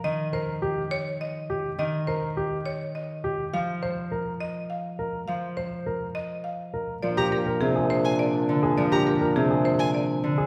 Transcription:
X:1
M:3/4
L:1/16
Q:1/4=103
K:Bbdor
V:1 name="Violin"
z12 | z12 | z12 | z12 |
[K:Bbmix] z b z4 z a z4 | z b z4 z a z4 |]
V:2 name="Marimba"
e z c z3 d z e z3 | e z c z3 d z e z3 | f z c z3 e z f z3 | f z c z3 e z f z3 |
[K:Bbmix] d z B z A z c z d z3 | d z B z A z c z d z3 |]
V:3 name="Grand piano"
z2 B z G z4 z G z | z2 B z G z4 z G z | z2 c z B z4 z B z | z2 c z B z4 z B z |
[K:Bbmix] z G z B z A z4 z A | z G z B z A z4 z A |]
V:4 name="Clarinet"
z12 | z12 | z12 | z12 |
[K:Bbmix] D12- | D8- D3 z |]
V:5 name="Harp" clef=bass
[E,F,]12 | E,12 | F,12 | F,12 |
[K:Bbmix] F,4 C,6 D,2 | F,4 C,6 D,2 |]
V:6 name="Bassoon" clef=bass
z12 | z12 | z12 | z12 |
[K:Bbmix] B,,12- | B,,12 |]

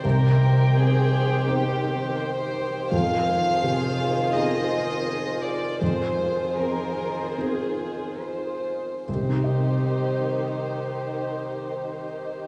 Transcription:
X:1
M:4/4
L:1/8
Q:1/4=79
K:Cm
V:1 name="Violin section"
B2 A2 G2 c2 | f4 e3 d | c2 B2 A2 c2 | c8 |]
V:2 name="Violin section"
[Gc]8 | [Ac]8 | [Ac]6- [Ac] z | [Gc]8 |]
V:3 name="Harp"
[C,E,CEc] C c2 G, C c E | F, E2 A C E2 A | F, E c A C E c A | [C,CEGe]8 |]
V:4 name="Felt piano"
C,,2 C2 [CEc]4 | F,,2 C,2 [CEA]4 | F,,2 C2 [CEA]4 | [C,,C,CEGe]8 |]
V:5 name="Viola section"
[E,g]8 | [E,F]8 | [E,F]6- [E,F] z | [E,E]8 |]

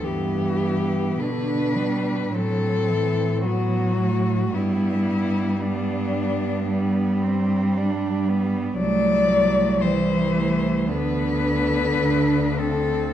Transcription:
X:1
M:4/4
L:1/8
Q:1/4=55
K:G
V:1 name="Cello"
G2 B2 A2 F2 | E2 D3 z3 | d2 c2 B3 A |]
V:2 name="Cello"
B,2 D2 C2 B, A, | B,2 B,2 B, C D B, | A, A, G, A, B,2 D C |]
V:3 name="Cello" clef=bass
E,2 D, G, F, E, F,2 | G,4 G,4 | F,2 E,2 D,4 |]
V:4 name="Cello" clef=bass
G,,2 B,,2 A,,4 | G,,8 | C,,4 D,,2 D,,2 |]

